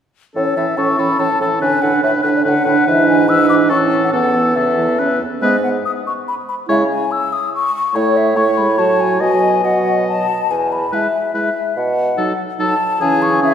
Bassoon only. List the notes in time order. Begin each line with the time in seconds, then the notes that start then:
0.36 A2
0.57 A2
0.78 A2
0.98 A2
1.20 A2
1.41 A2
1.62 A2
1.83 A2
2.03 A2
2.24 A2
2.45 A2
2.65 A2
2.87 G#2
3.71 A2
4.13 E2
5.42 G#2
6.69 C#3
7.95 A2
8.79 A2
9.22 B2
10.51 E2
11.77 B2
13.01 C#3